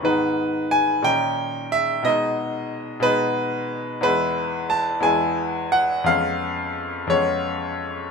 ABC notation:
X:1
M:6/8
L:1/8
Q:3/8=59
K:G#m
V:1 name="Grand piano"
B2 g =g2 e | d3 B3 | [K:E] B2 a g2 f | ^e3 c3 |]
V:2 name="Grand piano"
[G,,D,B,D]3 [A,,D,CD]3 | [B,,G,B,D]3 [B,,G,B,D]3 | [K:E] [E,,G,B,E]3 [E,,G,B,E]3 | [^E,,G,B,C]3 [E,,G,B,C]3 |]